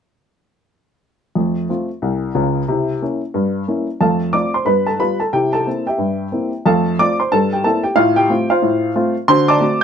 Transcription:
1.35 1.64 F2 medium
1.35 1.55 A3 soft
1.69 1.88 A3 soft
1.69 1.88 C4 soft
1.69 1.88 F4 soft
2.02 2.30 C2 medium
2.35 2.61 C#2 medium
2.35 2.62 C#3 medium
2.68 2.97 C3 medium
2.68 2.88 E4 soft
3.02 3.20 A#3 soft
3.02 3.20 C#4 soft
3.02 3.21 E4 soft
3.34 3.63 G2 medium
3.68 3.86 A#3 soft
3.68 3.86 C#4 soft
3.68 3.87 E4 soft
4.01 4.29 F2 medium
4.01 4.20 A3 soft
4.01 4.32 A4 medium
4.01 4.32 F5 soft
4.01 4.34 A5 medium
4.33 4.51 A3 soft
4.33 4.52 C4 soft
4.33 4.52 F4 soft
4.33 4.53 D5 soft
4.33 4.54 D6 medium
4.54 4.67 C5 soft
4.54 4.67 C6 medium
4.65 4.94 G2 medium
4.65 4.86 B3 soft
4.65 4.86 B4 medium
4.65 4.87 B5 medium
4.87 4.99 A4 soft
4.87 5.00 A5 medium
4.99 5.18 G3 soft
4.99 5.18 B3 soft
4.99 5.18 F4 soft
4.99 5.19 B4 soft
4.99 5.20 B5 medium
5.20 5.33 A4 soft
5.20 5.33 A5 medium
5.33 5.61 C3 medium
5.33 5.52 E4 soft
5.33 5.52 G4 medium
5.33 5.53 G5 medium
5.53 5.85 A4 medium
5.53 5.86 A5 medium
5.67 5.85 A#3 soft
5.67 5.85 C4 soft
5.67 5.85 E4 soft
5.87 6.49 G4 soft
5.87 6.49 E5 medium
5.87 6.53 G5 medium
5.98 6.27 G2 medium
6.32 6.50 A#3 soft
6.32 6.50 C4 soft
6.32 6.51 E4 soft
6.66 6.93 F2 medium
6.66 6.85 A3 medium
6.66 6.97 A4 medium
6.66 6.96 F5 medium
6.66 6.98 A5 medium
6.99 7.17 A3 soft
6.99 7.17 C4 soft
6.99 7.17 F4 soft
6.99 7.18 D5 medium
6.99 7.19 D6 medium
7.20 7.31 C5 medium
7.20 7.32 C6 medium
7.32 7.59 G2 medium
7.32 7.51 A4 medium
7.32 7.52 A5 medium
7.53 7.64 G4 soft
7.53 7.65 G5 medium
7.64 7.82 A#3 soft
7.64 7.82 C4 soft
7.64 7.83 E4 soft
7.64 7.84 A4 medium
7.64 7.84 A5 medium
7.83 7.96 G4 medium
7.83 7.97 G5 medium
7.96 8.24 A2 medium
7.96 8.16 F4 medium
7.96 8.17 F5 loud
8.16 8.48 G4 medium
8.16 8.50 G5 medium
8.29 8.48 A3 soft
8.29 8.48 C4 soft
8.29 8.48 F4 soft
8.50 8.94 F4 medium
8.50 9.13 C5 medium
8.50 9.16 F5 medium
8.62 8.91 A2 medium
8.95 9.14 A3 soft
8.95 9.14 C4 medium
8.95 9.14 F4 medium
9.28 9.57 D3 medium
9.28 9.48 F#4 medium
9.28 9.48 C5 medium
9.28 9.49 C6 loud
9.48 9.80 D5 medium
9.48 9.80 A5 medium
9.48 9.81 D6 medium
9.60 9.78 A3 soft
9.60 9.79 C4 soft
9.60 9.79 F#4 soft

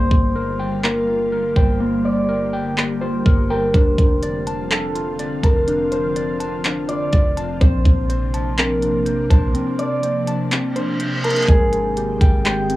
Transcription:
0.00 0.10 G1 loud
0.00 7.57 D3 medium
0.00 3.70 G3 medium
0.00 0.82 A#3 medium
0.00 3.70 A#3 medium
0.00 1.79 F4 medium
0.00 1.56 C5 loud
0.00 0.99 D5 medium
0.11 1.52 G1 loud
0.11 kick loud
0.35 1.31 A#4 medium
0.59 1.55 G5 medium
0.84 1.79 A#3 medium
0.84 2.96 A#4 medium
0.84 clap loud
1.07 2.53 F4 medium
1.32 2.28 A#4 medium
1.56 3.22 G1 loud
1.56 3.01 C5 medium
1.56 2.52 G5 medium
1.56 kick medium
1.80 2.76 A#3 loud
1.80 3.72 G4 medium
2.05 3.89 D5 medium
2.29 3.24 A#4 medium
2.53 3.49 G5 medium
2.77 3.74 A#3 medium
2.77 clap loud
3.01 3.74 F4 medium
3.01 3.73 C5 medium
3.26 3.72 G1 loud
3.26 3.74 A#4 medium
3.26 kick loud
3.50 4.77 A#4 medium
3.50 3.74 G5 medium
3.74 3.97 F1 loud
3.74 11.44 F3 medium
3.74 7.57 C4 medium
3.74 4.69 D4 loud
3.74 7.57 F4 medium
3.74 5.71 C5 medium
3.74 kick loud
3.74 closed hi-hat medium
3.98 5.39 F1 loud
3.98 kick medium
3.98 closed hi-hat medium
4.22 5.18 D5 medium
4.22 closed hi-hat medium
4.47 5.43 A5 medium
4.47 closed hi-hat medium
4.71 5.66 D4 medium
4.71 5.50 A4 medium
4.71 clap loud
4.71 closed hi-hat medium
4.95 6.40 F4 medium
4.95 closed hi-hat medium
5.19 6.15 D5 medium
5.19 closed hi-hat medium
5.43 7.09 F1 loud
5.43 7.56 A#4 medium
5.43 6.39 A5 medium
5.43 kick medium
5.43 closed hi-hat medium
5.68 6.64 D4 medium
5.68 closed hi-hat medium
5.92 7.60 C5 medium
5.92 closed hi-hat medium
6.16 7.11 D5 medium
6.16 closed hi-hat medium
6.40 7.36 A5 medium
6.40 closed hi-hat medium
6.64 7.61 D4 medium
6.64 clap loud
6.64 closed hi-hat medium
6.89 7.61 F4 medium
6.89 8.73 D5 medium
6.89 closed hi-hat medium
7.13 7.59 F1 loud
7.13 7.61 D5 medium
7.13 kick loud
7.13 closed hi-hat medium
7.37 7.61 A5 medium
7.37 closed hi-hat medium
7.61 7.85 A#1 loud
7.61 11.45 C3 medium
7.61 11.45 A#3 medium
7.61 8.57 C4 medium
7.61 11.45 D4 medium
7.61 9.30 C5 loud
7.61 kick loud
7.61 closed hi-hat medium
7.85 9.27 A#1 loud
7.85 kick medium
7.85 closed hi-hat medium
8.10 9.04 C5 medium
8.10 closed hi-hat medium
8.34 9.29 A5 medium
8.34 closed hi-hat medium
8.58 9.54 C4 medium
8.58 10.70 A#4 medium
8.58 clap loud
8.58 closed hi-hat medium
8.82 10.27 D4 medium
8.82 closed hi-hat medium
9.06 10.02 C5 medium
9.06 closed hi-hat medium
9.30 9.54 A#1 loud
9.30 10.75 C5 medium
9.30 10.26 A5 medium
9.30 kick medium
9.30 closed hi-hat medium
9.55 10.50 C4 loud
9.55 closed hi-hat medium
9.79 11.64 D5 medium
9.79 closed hi-hat medium
10.03 10.98 C5 medium
10.03 closed hi-hat medium
10.27 11.23 A5 medium
10.27 closed hi-hat medium
10.51 11.48 C4 medium
10.51 clap loud
10.51 closed hi-hat medium
10.51 reverse cymbal medium
10.76 11.48 D4 medium
10.76 12.74 C5 medium
10.76 closed hi-hat medium
11.00 11.48 C5 medium
11.00 closed hi-hat medium
11.24 12.76 A#4 medium
11.24 11.48 A5 medium
11.24 closed hi-hat medium
11.30 closed hi-hat medium
11.36 closed hi-hat medium
11.42 closed hi-hat medium
11.48 12.18 G#1 loud
11.48 12.76 D#3 medium
11.48 12.76 G#3 medium
11.48 12.44 G#3 medium
11.48 12.76 C4 medium
11.48 12.50 G#4 loud
11.48 12.76 G5 medium
11.48 kick loud
11.48 closed hi-hat medium
11.73 closed hi-hat medium
11.97 12.76 G4 medium
11.97 closed hi-hat medium
12.21 12.76 G#1 loud
12.21 12.76 G5 medium
12.21 kick loud
12.21 closed hi-hat medium
12.44 12.76 G#3 medium
12.44 12.76 G4 medium
12.44 clap loud
12.44 closed hi-hat medium
12.70 12.76 C4 medium
12.70 closed hi-hat medium

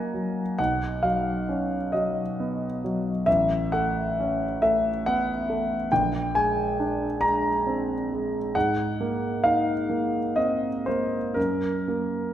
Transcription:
0.00 0.54 F#2 soft
0.00 0.14 F#3 soft
0.00 0.40 A#3 soft
0.00 0.61 C#4 soft
0.00 0.61 F5 medium
0.00 0.59 F#5 medium
0.00 0.59 G#5 medium
0.00 0.61 A#5 medium
0.14 0.60 F#3 soft
0.59 3.23 B1 soft
0.59 1.04 F#5 medium
1.03 1.76 F#3 soft
1.03 1.93 F5 medium
1.49 2.21 C#4 soft
1.92 2.66 F#3 soft
1.92 2.82 D#5 soft
2.40 3.10 B3 soft
2.84 3.27 F#3 soft
3.26 5.87 A1 soft
3.26 3.71 E5 medium
3.72 4.43 A3 soft
3.72 4.61 F#5 medium
4.20 4.88 C#4 soft
4.62 5.31 A3 soft
4.62 5.04 E5 medium
5.06 5.75 B3 soft
5.06 5.92 F#5 medium
5.50 5.92 A3 soft
5.92 8.52 A#1 soft
5.92 6.35 G5 medium
6.35 7.05 G#3 soft
6.35 7.22 G#5 medium
6.80 7.49 D4 soft
7.21 7.93 G#3 soft
7.21 8.55 A#5 medium
7.67 8.38 C4 soft
8.12 8.56 G#3 soft
8.55 11.33 G#2 soft
8.55 9.45 F#5 medium
9.01 9.73 A#3 soft
9.44 10.19 D#4 soft
9.44 10.37 F5 medium
9.90 10.66 A#3 soft
10.36 11.16 C4 soft
10.36 10.86 D#5 medium
10.86 11.38 A#3 soft
10.86 11.37 C5 medium
11.34 12.34 F#2 soft
11.34 12.34 A#4 medium
11.88 12.34 A#3 soft

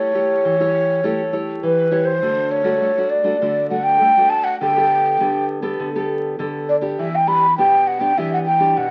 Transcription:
0.00 0.42 A3 medium
0.00 0.13 E4 medium
0.00 0.14 G4 medium
0.00 0.14 C#5 medium
0.00 1.35 C#5 loud
0.14 0.54 E4 medium
0.14 0.55 G4 medium
0.14 0.55 C#5 medium
0.45 1.01 E3 medium
0.60 1.00 E4 medium
0.60 1.00 G4 medium
0.60 1.00 C#5 medium
1.04 1.60 A3 medium
1.04 1.21 E4 medium
1.04 1.22 G4 medium
1.04 1.22 C#5 medium
1.33 1.88 E4 medium
1.33 1.88 G4 medium
1.33 1.88 C#5 medium
1.63 2.20 E3 medium
1.63 2.07 B4 medium
1.91 2.11 E4 medium
1.91 2.11 G4 medium
1.91 2.12 C#5 medium
2.05 2.53 C5 medium
2.22 2.79 D3 medium
2.22 2.62 A3 medium
2.22 2.63 D4 soft
2.22 2.63 F#4 medium
2.51 3.11 C#5 medium
2.64 2.80 A3 medium
2.64 2.91 D4 medium
2.64 2.91 F#4 medium
2.81 2.96 A3 medium
2.97 3.22 A3 medium
2.97 3.22 D4 medium
2.97 3.23 F#4 medium
3.10 3.69 D5 medium
3.24 3.35 A3 medium
3.24 3.36 D4 medium
3.24 3.36 F#4 medium
3.42 3.98 D3 medium
3.42 3.67 A3 medium
3.42 3.67 D4 medium
3.42 3.67 F#4 medium
3.70 4.00 A3 medium
3.70 4.11 D4 soft
3.70 4.11 F#4 medium
3.70 3.85 F#5 medium
3.84 4.31 G5 loud
4.01 4.15 A3 medium
4.17 4.56 A3 medium
4.17 4.56 D4 medium
4.17 4.56 F#4 medium
4.30 4.46 A5 medium
4.44 4.60 F#5 medium
4.60 5.17 D3 medium
4.60 4.71 B3 medium
4.60 4.71 G4 medium
4.60 4.71 A4 medium
4.60 5.46 G5 medium
4.77 5.16 B3 medium
4.77 5.16 G4 medium
4.77 5.16 A4 medium
5.20 5.76 D3 medium
5.20 5.60 B3 medium
5.20 5.60 G4 medium
5.20 5.60 A4 medium
5.62 5.88 B3 medium
5.62 5.89 G4 medium
5.62 5.89 A4 medium
5.79 6.36 D3 medium
5.95 6.35 B3 medium
5.95 6.35 G4 medium
5.95 6.35 A4 medium
6.39 6.95 D3 medium
6.39 6.67 B3 medium
6.39 6.67 G4 medium
6.39 6.67 A4 medium
6.69 6.76 D5 medium
6.81 7.07 B3 medium
6.81 7.08 D4 medium
6.81 7.08 G4 medium
6.99 7.55 E3 medium
6.99 7.17 E5 medium
7.15 7.29 G5 medium
7.27 7.45 B3 soft
7.27 7.45 D4 medium
7.27 7.45 G4 medium
7.27 7.57 B5 loud
7.58 8.15 B2 medium
7.58 7.98 B3 medium
7.58 7.98 D4 medium
7.58 7.98 G4 medium
7.58 7.89 G5 medium
7.87 8.02 F#5 medium
8.00 8.12 B3 medium
8.00 8.12 D4 medium
8.00 8.12 G4 medium
8.00 8.20 G5 medium
8.18 8.74 E3 medium
8.18 8.45 B3 medium
8.18 8.46 D4 medium
8.18 8.46 G4 medium
8.18 8.33 E5 medium
8.33 8.39 F#5 medium
8.46 8.79 G5 medium
8.60 8.86 B3 medium
8.60 8.86 D4 medium
8.60 8.86 G4 medium
8.77 8.91 B2 medium
8.77 8.91 F#5 medium

